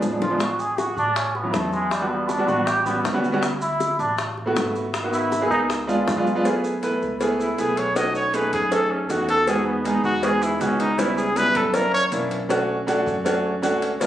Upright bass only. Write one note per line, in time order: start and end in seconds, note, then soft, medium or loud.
0.02 0.91 A1 medium
0.97 1.50 A2 medium
1.53 2.42 E2 medium
2.48 3.01 A1 medium
3.05 3.93 D2 medium
3.99 4.52 A1 loud
4.56 5.45 G#1 medium
5.50 6.03 C#2 medium
6.08 6.96 F#2 loud
7.02 7.55 C#2 medium
7.58 8.47 B1 medium
8.53 9.06 F#2 loud
9.09 9.98 E2 medium
10.04 10.57 E2 loud
10.61 11.49 C#2 loud
11.55 12.08 F#2 loud
12.12 13.01 B1 medium
13.06 13.59 F#2 loud
13.63 14.07 C#2 medium